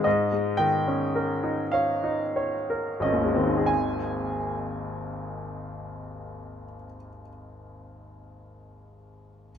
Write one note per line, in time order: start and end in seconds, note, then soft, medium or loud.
0.04 3.64 G#2 soft
0.04 0.57 D#5 medium
0.32 0.75 G#3 soft
0.57 1.03 D#3 soft
0.57 1.72 G5 medium
0.87 1.32 C#4 soft
1.15 1.61 A#4 soft
1.44 1.91 D#4 soft
1.72 2.22 C#5 soft
1.72 3.02 F5 medium
2.04 2.55 D#4 soft
2.36 2.89 C#5 soft
2.70 3.24 A#4 soft
3.00 6.62 G#1 soft
3.00 3.56 C#4 soft
3.00 3.67 D#5 soft
3.12 6.74 D#2 soft
3.23 6.85 G#3 soft
3.34 3.68 D#3 soft
3.34 6.97 C4 soft
3.46 7.09 D#4 soft
3.58 7.20 G#4 soft
3.66 7.29 G#5 soft